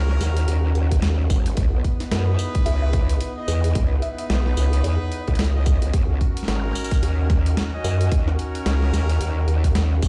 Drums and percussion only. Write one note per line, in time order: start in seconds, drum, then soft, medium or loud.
0.09 snare soft
0.21 snare soft
0.21 closed hi-hat soft
0.21 tambourine medium
0.37 closed hi-hat medium
0.48 closed hi-hat medium
0.75 closed hi-hat soft
0.92 kick medium
0.92 closed hi-hat medium
1.02 snare loud
1.02 closed hi-hat medium
1.30 kick loud
1.30 tambourine medium
1.46 closed hi-hat medium
1.57 kick loud
1.57 closed hi-hat medium
1.84 kick medium
1.84 closed hi-hat soft
2.00 snare soft
2.00 closed hi-hat soft
2.12 snare loud
2.12 closed hi-hat medium
2.39 tambourine medium
2.55 kick loud
2.55 closed hi-hat medium
2.66 closed hi-hat medium
2.93 kick loud
2.93 snare soft
2.93 closed hi-hat soft
3.09 closed hi-hat medium
3.21 closed hi-hat medium
3.48 tambourine medium
3.64 closed hi-hat medium
3.75 kick loud
3.75 closed hi-hat medium
4.02 closed hi-hat soft
4.18 closed hi-hat soft
4.30 snare loud
4.30 closed hi-hat medium
4.46 snare soft
4.57 tambourine medium
4.73 closed hi-hat medium
4.84 closed hi-hat medium
5.12 closed hi-hat soft
5.28 kick medium
5.28 closed hi-hat soft
5.35 snare loud
5.35 closed hi-hat soft
5.39 closed hi-hat medium
5.44 closed hi-hat soft
5.66 kick loud
5.66 tambourine medium
5.82 closed hi-hat medium
5.93 kick loud
5.93 closed hi-hat medium
6.21 kick medium
6.21 closed hi-hat soft
6.37 closed hi-hat soft
6.43 snare soft
6.48 snare loud
6.48 closed hi-hat medium
6.75 tambourine medium
6.84 tambourine medium
6.91 kick loud
6.91 closed hi-hat medium
6.91 tambourine soft
7.03 closed hi-hat medium
7.30 kick loud
7.30 snare soft
7.30 closed hi-hat soft
7.46 closed hi-hat medium
7.57 snare loud
7.57 closed hi-hat medium
7.84 tambourine medium
8.01 closed hi-hat medium
8.12 kick loud
8.12 closed hi-hat medium
8.28 snare medium
8.39 closed hi-hat soft
8.55 closed hi-hat medium
8.66 snare loud
8.66 closed hi-hat medium
8.82 snare soft
8.94 snare soft
8.94 tambourine medium
9.10 closed hi-hat medium
9.21 closed hi-hat medium
9.48 closed hi-hat soft
9.64 kick medium
9.64 closed hi-hat medium
9.75 snare loud
9.75 closed hi-hat medium
10.02 kick loud
10.02 tambourine medium